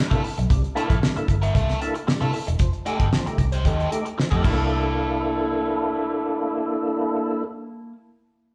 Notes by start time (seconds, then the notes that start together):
0.10 C3 A#3 D4 E4 A4, kick, closed hi-hat
0.23 E4, muted overdriven electric guitar stroke, open hi-hat
0.38 B1, muted overdriven electric guitar stroke, closed hi-hat
0.50 C2 C3 G3, kick, closed hi-hat
0.64 closed hi-hat
0.75 A#3 D4 E4 A4, closed hi-hat
0.90 A#1 E4 A4, kick, closed hi-hat
1.02 C3 G3, muted overdriven electric guitar stroke, snare
1.16 A#3 D4 E4 A4, muted overdriven electric guitar stroke, muted fingered electric bass stroke, closed hi-hat
1.28 G1 E4 A4, kick, closed hi-hat
1.42 A#3 E4 A#4, closed hi-hat
1.55 C2 A#3 E4 A4, kick, closed hi-hat
1.69 snare, closed hi-hat
1.81 A#3 D4 E4 A4, muted overdriven electric guitar stroke, closed hi-hat
1.94 muted overdriven electric guitar stroke, closed hi-hat
2.07 C3 G3, muted overdriven electric guitar stroke, snare
2.21 C3 A#3 D4 E4 A4, closed hi-hat
2.33 E4 A4, muted overdriven electric guitar stroke, open hi-hat
2.47 E1, muted overdriven electric guitar stroke, closed hi-hat
2.59 F1 F3, kick, closed hi-hat
2.73 closed hi-hat
2.85 A3 D#4 G4 A4, closed hi-hat
3.00 G1 D#4 G4, kick, closed hi-hat
3.13 F3, muted overdriven electric guitar stroke, snare
3.26 A3 D#4 G4, muted overdriven electric guitar stroke, muted fingered electric bass stroke, closed hi-hat
3.38 C2 D#4 G4, kick, closed hi-hat
3.52 D#4 G4 C5, closed hi-hat
3.65 D#2 D#4 G4 A4, kick, closed hi-hat
3.80 closed hi-hat
3.91 A3 D#4 G4, muted overdriven electric guitar stroke, closed hi-hat
4.05 muted overdriven electric guitar stroke, closed hi-hat
4.18 F3, muted overdriven electric guitar stroke, snare
4.31 F2 A3 D#4 G4 A4, kick, closed hi-hat
4.42 C2 A#3 D4 E4 A4, kick, crash
4.47 A4